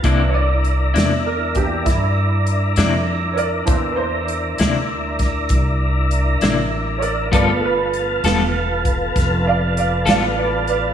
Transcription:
<<
  \new Staff \with { instrumentName = "Grand piano" } { \time 12/8 \key c \major \tempo 4. = 66 r8 <cis'' d''>4. bes'8 g'8 e'2 r8 <bes' cis'' d''>8 | <e' c''>8 <b' c''>2 r2. <bes' cis'' d''>8 | <b' d''>8 <bes' b'>2 r4 <d'' e'' f''>8 <d'' f''>8 <d'' f''>8 <b' d''>8 <b' d''>8 | }
  \new Staff \with { instrumentName = "Grand piano" } { \time 12/8 \key c \major <e bes d'>8 r2 <e bes d'>8 r2. | <e bes d'>8 r1 r4. | <f a b>4. <f a b>8 r1 | }
  \new Staff \with { instrumentName = "Tonewheel organ" } { \time 12/8 \key c \major <d' e' bes'>1. | <d' e' bes'>8 <d' e' bes'>1~ <d' e' bes'>4. | <b f' a'>1. | }
  \new Staff \with { instrumentName = "Clean electric guitar" } { \time 12/8 \key c \major <c bes d' e'>8 r4 <c bes d' e'>8 r2 r8 <c bes d' e'>8 r4 | r4. <c bes d' e'>8 r2 r8 <c bes d' e'>8 r4 | <g b f' a'>8 r4 <g b f' a'>8 r2 r8 <g b f' a'>8 r4 | }
  \new Staff \with { instrumentName = "Upright bass" } { \clef bass \time 12/8 \key c \major c,4. e,4. g,4. f,4. | e,4. d,4. c,4. a,,4. | g,,4. e,,4. f,,4. a,,4. | }
  \new DrumStaff \with { instrumentName = "Drums" } \drummode { \time 12/8 <hh bd>4 hh8 <hh sn>4 <hh bd>8 <hh bd sn>4 hh8 <hh sn>4 hh8 | <hh bd>4 hh8 <hh sn>4 <hh bd sn>8 <hh bd>4 hh8 <hh sn>4 hh8 | <hh bd>4 hh8 <hh sn>4 <hh bd>8 <hh bd sn>4 hh8 <hh sn>4 hh8 | }
>>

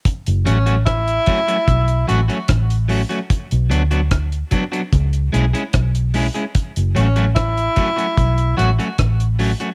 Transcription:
<<
  \new Staff \with { instrumentName = "Tenor saxophone" } { \time 4/4 \key fis \minor \tempo 4 = 74 r8 cis'8 e'4. fis'16 r4 r16 | r1 | r8 cis'8 e'4. fis'16 r4 r16 | }
  \new Staff \with { instrumentName = "Clean electric guitar" } { \time 4/4 \key fis \minor r8 <fis a cis' fis'>16 <fis a cis' fis'>16 r8 <fis a cis' fis'>16 <fis a cis' fis'>16 r8 <fis a cis' fis'>16 <fis a cis' fis'>16 r8 <fis a cis' fis'>16 <fis a cis' fis'>16 | r8 <fis b d' fis'>16 <fis b d' fis'>16 r8 <fis b d' fis'>16 <fis b d' fis'>16 r8 <gis cis' e' gis'>16 <gis cis' e' gis'>16 r8 <gis cis' e' gis'>16 <gis cis' e' gis'>16 | r8 <fis a cis' fis'>16 <fis a cis' fis'>16 r8 <fis a cis' fis'>16 <fis a cis' fis'>16 r8 <fis a cis' fis'>16 <fis a cis' fis'>16 r8 <fis a cis' fis'>16 <fis a cis' fis'>16 | }
  \new Staff \with { instrumentName = "Fingered electric bass" } { \clef bass \time 4/4 \key fis \minor r16 fis,,16 a,,4 r8 b,,8 a,,16 r16 a,,8. r16 | r16 b,,16 d,4 r8 cis,8 b,,16 r16 b,,8. r16 | r16 fis,,16 a,,4 r8 b,,8 a,,16 r16 a,,8. r16 | }
  \new DrumStaff \with { instrumentName = "Drums" } \drummode { \time 4/4 <hh bd>16 hh16 hh16 hh16 <hh bd ss>16 hh16 <hh bd>16 hh16 <hh bd>16 hh16 hh16 hh16 <hh bd ss>16 hh16 hho16 hh16 | <hh bd>16 hh16 hh16 hh16 <hh bd ss>16 hh16 <hh bd>16 hh16 <hh bd>16 hh16 hh16 hh16 <hh bd ss>16 hh16 hho16 hh16 | <hh bd>16 hh16 hh16 hh16 <hh bd ss>16 hh16 <hh bd>16 hh16 <hh bd>16 hh16 hh16 hh16 <hh bd ss>16 hh16 hho16 hh16 | }
>>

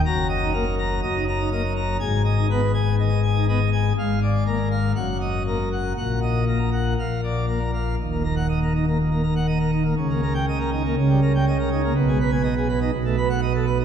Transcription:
<<
  \new Staff \with { instrumentName = "Pipe organ" } { \time 4/4 \key ees \minor \tempo 4 = 122 << { bes''8 ees''8 bes'8 bes''8 ees''8 bes''8 ees''8 bes''8 | aes''8 ees''8 ces''8 aes''8 ees''8 aes''8 ees''8 aes''8 | f''8 d''8 bes'8 f''8 ges''8 ees''8 bes'8 ges''8 | ges''8 ees''8 bes'8 ges''8 f''8 d''8 bes'8 f''8 |
r8. ges''16 r2. | r8. g''16 r2. | r8. aes''16 r4. r16 fis''16 r4 | } \\ { ges,8. ees'16 bes16 r8. ges,16 ees'16 r16 ees'16 bes16 r8. | aes,8. ees'16 ces'16 r8. ees16 r8 ees'16 ces'16 r8. | aes,4 bes16 r8. ges,4 bes16 r8. | bes,4 bes16 r8. bes,4 bes16 r8. |
ees,16 bes16 bes'16 r16 ees''16 bes'16 ees'16 bes16 bes,16 bes16 bes'16 ges''16 ees''16 bes'16 ees'16 bes16 | des16 bes16 bes'16 r16 ees''16 bes'16 ees'16 bes16 des16 g16 bes'16 g''16 ees''16 bes'16 ees'16 bes16 | ces16 aes16 ces''16 r16 ees''16 aes'16 ces''16 ees'16 b,16 a16 b'16 r16 dis''16 a'16 b'16 dis'16 | } >> }
  \new Staff \with { instrumentName = "Pipe organ" } { \clef bass \time 4/4 \key ees \minor ges,,2 ges,,2 | aes,,1 | aes,,2 ges,,2 | bes,,2 bes,,2 |
ees,,1 | des,2 des,2 | ces,2 b,,2 | }
>>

